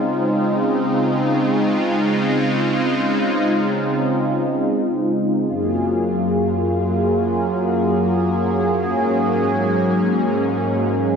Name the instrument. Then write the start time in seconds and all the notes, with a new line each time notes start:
analog synth pad
Already playing: C#3 G#3 C4 D#4 F4
5.49 F#2 F#3 A#3 F4 G#4
8.83 G#2 C#4